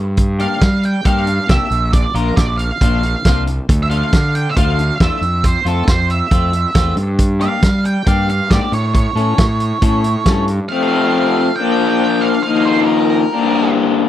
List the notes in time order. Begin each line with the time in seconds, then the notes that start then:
Already playing: G2
0.17 muted overdriven electric guitar stroke, kick, closed hi-hat
0.39 A#3 D4 G4 F5, closed hi-hat
0.61 G3, muted overdriven electric guitar stroke, kick, snare, closed hi-hat
0.83 G5, muted overdriven electric guitar stroke, closed hi-hat
1.05 G2 A#3 D4 G4 F5, kick, closed hi-hat
1.27 muted overdriven electric guitar stroke, closed hi-hat
1.48 C2 A#3 D4 G4 E5, kick, snare, closed hi-hat
1.70 A#1, muted overdriven electric guitar stroke, closed hi-hat
1.93 D5, muted overdriven electric guitar stroke, kick, closed hi-hat
2.14 A#1 F3 A#3 D4 F4 A#4, closed hi-hat
2.36 A#1 D5, muted overdriven electric guitar stroke, kick, snare, closed hi-hat
2.58 F5, muted overdriven electric guitar stroke, closed hi-hat
2.81 A#1 F3 A#3 D4 F4, kick, closed hi-hat
3.03 muted overdriven electric guitar stroke, closed hi-hat
3.25 C2 F3 A#3 D4 F4, kick, snare, closed hi-hat
3.47 muted overdriven electric guitar stroke, closed hi-hat
3.69 D2, muted overdriven electric guitar stroke, kick, closed hi-hat
3.83 E5
3.90 F3 A3 D4 F4 F5, closed hi-hat
4.13 D3, muted overdriven electric guitar stroke, kick, snare, closed hi-hat
4.35 G5, muted overdriven electric guitar stroke, closed hi-hat
4.49 E5
4.57 D2 F3 A3 D4 F4 F5, kick, closed hi-hat
4.79 muted overdriven electric guitar stroke, closed hi-hat
5.00 E2 F3 A3 D4 F4 E5, kick, snare, closed hi-hat
5.21 F2, muted overdriven electric guitar stroke, closed hi-hat
5.44 C5, muted overdriven electric guitar stroke, kick, closed hi-hat
5.65 F2 A3 C4 F4 A4, closed hi-hat
5.87 F2 C5, muted overdriven electric guitar stroke, kick, snare, closed hi-hat
6.09 E5, muted overdriven electric guitar stroke, closed hi-hat
6.30 F2 A3 C4 F4, kick, closed hi-hat
6.53 muted overdriven electric guitar stroke, closed hi-hat
6.74 E2 A3 C4 F4, kick, snare, closed hi-hat
6.96 G2, muted overdriven electric guitar stroke, closed hi-hat
7.18 muted overdriven electric guitar stroke, kick, closed hi-hat
7.39 A#3 D4 G4 F5, closed hi-hat
7.62 G3, muted overdriven electric guitar stroke, kick, snare, closed hi-hat
7.84 G5, muted overdriven electric guitar stroke, closed hi-hat
8.06 G2 A#3 D4 G4 F5, kick, closed hi-hat
8.28 F5, muted overdriven electric guitar stroke, closed hi-hat
8.50 G#2 A#3 D4 G4 D5, kick, snare, closed hi-hat
8.72 A2 C#5, muted overdriven electric guitar stroke, closed hi-hat
8.94 C#5, muted overdriven electric guitar stroke, kick, closed hi-hat
9.15 A2 E3 A3 C#4 A4, closed hi-hat
9.38 A2, muted overdriven electric guitar stroke, kick, snare, closed hi-hat
9.60 muted overdriven electric guitar stroke, closed hi-hat
9.81 A2 E3 A3 C#4 A4, kick, closed hi-hat
10.04 muted overdriven electric guitar stroke, closed hi-hat
10.26 G2 E3 A3 C#4 A4, kick, snare, closed hi-hat
10.48 muted overdriven electric guitar stroke, closed hi-hat
10.68 F2 C3 F3 A3 C4 F5
11.56 A#2 F3 A#3 G5
11.60 D4
11.89 G5
12.21 F5
12.43 D#3 F3 A#3 D#4 F5
12.65 C5
12.82 A4
12.86 A#4
13.31 G2 D3 G3 A#3 D4